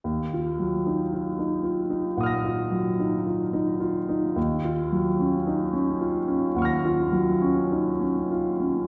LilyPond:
\new Staff \with { instrumentName = "Grand piano" } { \time 4/4 \key ees \minor \tempo 4 = 55 << { r2 <ges'' ees''' f''' bes'''>2 | r2 <ges'' des''' f''' bes'''>2 | } \\ { ees,16 f'16 ges16 ees'16 f'16 ees'16 f'16 ees'16 bes,16 f'16 ges16 ees'16 f'16 ees'16 f'16 ees'16 | ees,16 f'16 ges16 des'16 ees'16 des'16 f'16 des'16 ees,16 f'16 ges16 des'16 ees'16 des'16 f'16 des'16 | } >> }